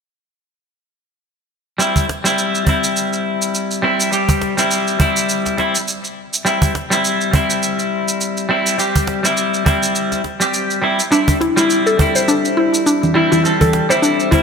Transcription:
1.78 clean electric guitar G3 C4 E4, shaker
1.96 cajon bass, shaker
2.09 cajon slap
2.24 clean electric guitar G3 C4 E4, shaker
2.38 shaker
2.55 shaker
2.65 clean electric guitar G3 C4, cajon bass
2.69 clean electric guitar E4
2.84 shaker
2.97 shaker
3.13 shaker
3.42 shaker
3.55 shaker
3.71 shaker
3.82 clean electric guitar G3 C4 E4
4.00 shaker
4.11 clean electric guitar G3 C4 G4, shaker
4.29 cajon bass, shaker
4.42 cajon slap
4.57 clean electric guitar G3 C4 E4, shaker
4.71 shaker
4.88 shaker
4.99 clean electric guitar G3 C4 E4, cajon bass
5.17 shaker
5.29 shaker
5.46 cajon slap, shaker
5.57 clean electric guitar G3 C4 E4, cajon slap
5.75 shaker
5.88 shaker
6.04 shaker
6.34 shaker
6.45 clean electric guitar G3 C4 E4, shaker
6.62 cajon bass, shaker
6.75 cajon slap
6.90 clean electric guitar G3 C4 E4, shaker
7.05 shaker
7.21 shaker
7.31 clean electric guitar G3 C4, cajon bass
7.35 clean electric guitar E4
7.50 shaker
7.63 shaker
7.79 shaker
8.08 shaker
8.21 shaker
8.37 shaker
8.49 clean electric guitar G3 C4 E4
8.67 shaker
8.78 clean electric guitar G3 C4 G4, shaker
8.96 cajon bass, shaker
9.07 cajon slap
9.23 clean electric guitar G3 C4 E4, shaker
9.37 shaker
9.54 shaker
9.65 clean electric guitar G3 C4 E4, cajon bass
9.83 shaker
9.95 shaker
10.12 cajon slap, shaker
10.24 cajon slap
10.40 clean electric guitar G3 C4 G4, shaker
10.54 shaker
10.70 shaker
10.82 clean electric guitar G3 C4 E4
11.00 shaker
11.11 clean electric guitar G3 C4 E4, synth pluck D4, shaker
11.28 cajon bass, shaker
11.41 synth pluck E4, cajon slap
11.56 clean electric guitar G3 C4 E4, synth pluck E4, shaker
11.70 shaker
11.86 synth pluck A4, shaker
11.97 clean electric guitar G3 C4, cajon bass
12.01 clean electric guitar E4
12.16 synth pluck C5, shaker
12.28 synth pluck D4, shaker
12.45 shaker
12.57 synth pluck E4
12.74 shaker
12.86 synth pluck D4, shaker
13.03 low conga, shaker
13.14 clean electric guitar G3 C4 E4, synth pluck E4
13.32 synth pluck E4, low conga, shaker
13.44 clean electric guitar G3 C4 A4, shaker
13.61 synth pluck A4, cajon bass, low conga, shaker
13.73 cajon slap
13.89 clean electric guitar G3 C4 E4, synth pluck C5, shaker
14.02 synth pluck D4, shaker
14.20 shaker
14.31 clean electric guitar G3 C4 E4, synth pluck E4, cajon bass

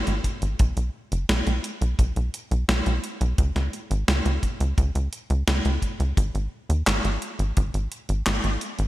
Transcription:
0.07 analog synth bass G#1, closed hi-hat
0.24 kick, closed hi-hat
0.42 analog synth bass G#1, closed hi-hat
0.59 analog synth bass B1, kick, closed hi-hat
0.77 analog synth bass B1, closed hi-hat
1.12 analog synth bass F#1, closed hi-hat
1.29 analog synth bass B1, snare, closed hi-hat
1.47 analog synth bass B1, closed hi-hat
1.64 closed hi-hat
1.81 analog synth bass B1, closed hi-hat
1.99 analog synth bass B1, kick, closed hi-hat
2.16 analog synth bass B1, closed hi-hat
2.34 closed hi-hat
2.51 analog synth bass B1, closed hi-hat
2.69 analog synth bass B1, snare, closed hi-hat
2.86 analog synth bass B1, closed hi-hat
3.04 closed hi-hat
3.21 analog synth bass B1, closed hi-hat
3.38 analog synth bass C#2, kick, closed hi-hat
3.56 analog synth bass C#2, snare, closed hi-hat
3.73 closed hi-hat
3.91 analog synth bass G#1, closed hi-hat
4.08 analog synth bass C#2, snare, closed hi-hat
4.25 analog synth bass C#2, closed hi-hat
4.43 kick, closed hi-hat
4.60 analog synth bass C#2, closed hi-hat
4.78 analog synth bass C#2, kick, closed hi-hat
4.95 analog synth bass C#2, closed hi-hat
5.13 closed hi-hat
5.30 analog synth bass C#2, closed hi-hat
5.48 analog synth bass C#2, snare, closed hi-hat
5.65 analog synth bass C#2, closed hi-hat
5.82 kick, closed hi-hat
6.00 analog synth bass C#2, closed hi-hat
6.17 analog synth bass G#1, kick, closed hi-hat
6.35 analog synth bass G#1, closed hi-hat
6.69 analog synth bass D#2, closed hi-hat
6.87 analog synth bass G#1, snare, clap, closed hi-hat
7.04 analog synth bass G#1, closed hi-hat
7.22 closed hi-hat
7.39 analog synth bass G#1, closed hi-hat
7.57 analog synth bass G#1, kick, closed hi-hat
7.74 analog synth bass G#1, closed hi-hat
7.92 closed hi-hat
8.09 analog synth bass G#1, closed hi-hat
8.26 analog synth bass G#1, snare, clap, closed hi-hat
8.44 analog synth bass G#1, closed hi-hat
8.61 closed hi-hat
8.79 analog synth bass G#1, closed hi-hat

